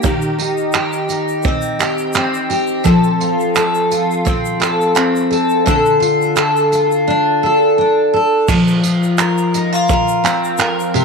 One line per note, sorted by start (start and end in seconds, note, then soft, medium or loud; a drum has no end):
0.00 2.85 D#3 medium
0.00 0.11 A#3 medium
0.00 0.38 D#4 soft
0.00 shaker medium
0.04 0.73 G4 medium
0.04 kick loud
0.22 shaker soft
0.39 1.08 D#4 medium
0.39 tambourine medium
0.57 shaker soft
0.72 1.78 G4 medium
0.72 clap medium
0.72 shaker medium
0.92 shaker soft
1.09 2.93 D#4 medium
1.09 tambourine medium
1.09 shaker soft
1.28 shaker soft
1.43 2.14 C4 medium
1.43 kick loud
1.43 shaker medium
1.62 shaker medium
1.79 2.49 G4 medium
1.79 clap medium
1.79 tambourine medium
1.79 shaker soft
1.98 shaker soft
2.13 4.24 C4 medium
2.13 clap loud
2.13 shaker medium
2.34 shaker soft
2.50 2.84 G4 medium
2.50 tambourine medium
2.67 shaker medium
2.84 6.34 F3 medium
2.84 3.56 A4 medium
2.84 kick loud
2.84 shaker medium
3.04 shaker soft
3.21 3.91 F4 medium
3.21 tambourine medium
3.40 shaker soft
3.55 4.59 A4 medium
3.55 clap loud
3.55 shaker medium
3.75 shaker medium
3.91 6.00 F4 medium
3.91 tambourine medium
3.91 shaker soft
4.11 shaker soft
4.25 4.94 C4 medium
4.25 kick loud
4.25 shaker medium
4.45 shaker medium
4.60 5.30 A4 medium
4.60 clap medium
4.60 tambourine medium
4.60 shaker soft
4.81 shaker soft
4.95 5.74 C4 medium
4.95 clap loud
4.95 shaker medium
5.16 shaker medium
5.31 5.66 A4 medium
5.31 tambourine medium
5.49 shaker medium
5.66 8.48 D3 medium
5.66 6.35 A4 medium
5.66 kick loud
5.66 shaker medium
5.86 shaker soft
6.00 6.72 F4 medium
6.00 tambourine medium
6.22 shaker soft
6.36 7.42 A4 medium
6.36 clap loud
6.36 shaker medium
6.57 shaker medium
6.72 8.83 F4 medium
6.72 tambourine medium
6.72 shaker soft
6.91 shaker soft
7.08 7.77 D4 medium
7.43 8.12 A4 medium
7.78 8.56 D4 medium
8.14 8.57 A4 medium
8.48 11.05 F3 medium
8.48 kick loud
8.48 crash loud
8.48 shaker medium
8.68 shaker soft
8.84 9.54 F4 medium
8.84 tambourine medium
8.84 shaker medium
9.03 shaker soft
9.18 9.90 A#4 medium
9.18 clap loud
9.18 shaker medium
9.38 shaker medium
9.54 9.73 D#4 medium
9.54 tambourine medium
9.54 shaker soft
9.72 11.02 F4 medium
9.72 shaker soft
9.89 10.58 A#4 medium
9.89 kick loud
9.89 shaker medium
10.08 shaker medium
10.24 11.05 C4 medium
10.24 clap medium
10.24 tambourine medium
10.24 shaker medium
10.44 shaker medium
10.58 11.05 A#4 medium
10.58 clap loud
10.58 shaker medium
10.80 shaker medium
10.94 11.05 C3 medium
10.94 tambourine medium